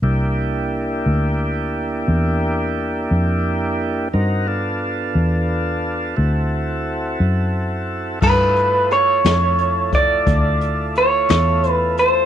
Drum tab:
CC |------------|------------|x-----------|
HH |------------|------------|-xxxxxxxxxxx|
SD |------------|------------|---o-----o--|
BD |------------|------------|o----oo-----|